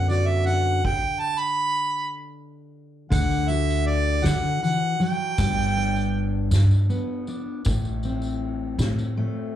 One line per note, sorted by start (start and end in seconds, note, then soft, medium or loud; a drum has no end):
0.00 0.80 F#2 medium
0.00 3.09 D3 medium
0.00 0.80 B3 medium
0.00 0.46 D4 medium
0.09 0.81 F#4 medium
0.09 0.29 D5 medium
0.09 ride soft
0.09 tambourine soft
0.27 0.46 E5 medium
0.46 0.80 D4 medium
0.46 0.81 F#5 medium
0.46 ride soft
0.85 1.21 G5 medium
0.85 kick medium
0.85 crash medium
1.19 1.41 A5 loud
1.39 2.16 B5 loud
3.10 4.21 D2 loud
3.10 4.24 D3 medium
3.10 3.49 F#5 medium
3.10 kick loud
3.10 ride medium
3.10 tambourine loud
3.31 tambourine soft
3.48 5.34 F#4 medium
3.48 3.86 E5 medium
3.48 ride medium
3.48 tambourine soft
3.70 tambourine soft
3.87 4.26 D5 medium
3.87 ride medium
4.24 4.62 D3 medium
4.24 4.61 D3 loud
4.24 4.62 F#5 loud
4.24 snare loud
4.24 ride medium
4.24 tambourine medium
4.62 4.99 E3 medium
4.62 4.98 F#5 loud
4.62 ride medium
4.62 tambourine soft
4.99 5.38 F#3 medium
4.99 6.49 G5 loud
4.99 ride medium
4.99 tambourine soft
5.38 6.48 G1 loud
5.38 6.50 G2 medium
5.38 kick medium
5.38 ride medium
5.38 tambourine medium
5.58 tambourine soft
5.76 7.27 D4 medium
5.76 ride medium
5.76 tambourine soft
5.96 tambourine soft
6.15 ride soft
6.51 6.88 G2 loud
6.51 muted steel-string acoustic guitar stroke medium
6.51 snare medium
6.51 ride medium
6.51 tambourine medium
6.71 tambourine soft
6.89 7.61 B3 medium
6.89 ride medium
6.89 tambourine soft
7.27 7.61 D4 medium
7.27 ride soft
7.27 tambourine soft
7.65 8.75 A1 loud
7.65 8.79 A2 medium
7.65 kick loud
7.65 ride medium
7.65 tambourine medium
7.85 tambourine soft
8.03 9.55 C4 medium
8.03 ride medium
8.03 tambourine soft
8.22 tambourine soft
8.42 ride medium
8.79 9.15 A2 loud
8.79 muted steel-string acoustic guitar stroke medium
8.79 snare medium
8.79 ride medium
8.79 tambourine medium
8.99 tambourine soft
9.17 9.56 A3 medium
9.17 ride medium